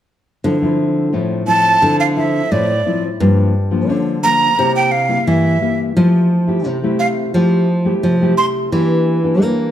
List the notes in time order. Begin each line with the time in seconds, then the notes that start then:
0.44 D3 F3 C4 E4
0.62 F3 C4 E4
1.13 A2 F3 C4 E4
1.46 F3 C4 E4 A5
1.82 D3 F3 C4 E4
2.00 F5
2.16 F3 C4 E4 E5
2.51 A2 F3 C4 E4 D5
2.86 F3 C4 E4
3.20 G2 F3 A#3 D4
3.71 F3 A#3 D4
3.89 D3
4.23 F3 A#3 D4 A#5
4.58 C3 A#3 E4 G4
4.76 G5
4.91 F5
5.09 A#3 E4 G4
5.27 G2 E3 E5
5.61 A#3 E4 G4
5.97 F3 A3 E4 G4
6.47 A3 E4 G4
6.65 C3
6.83 A3 E4 G4
6.99 F5
7.35 F3 A3 E4 G4
7.85 A3 E4 G4
8.03 C3 F3
8.21 A3 E4 G4
8.37 C6
8.73 E3 A#3 D4 G4
9.23 A#3 D4 G4
9.42 E3 A#3